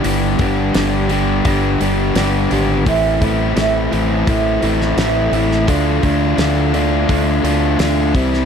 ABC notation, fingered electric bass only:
X:1
M:4/4
L:1/8
Q:1/4=85
K:Ddor
V:1 name="Fingered electric bass" clef=bass
G,,, G,,, G,,,2 G,,, G,,, G,,, ^G,,, | A,,, A,,, A,,, A,,, A,,, A,,, A,,, A,,, | D,, D,, D,,2 D,, D,, D,, C,, |]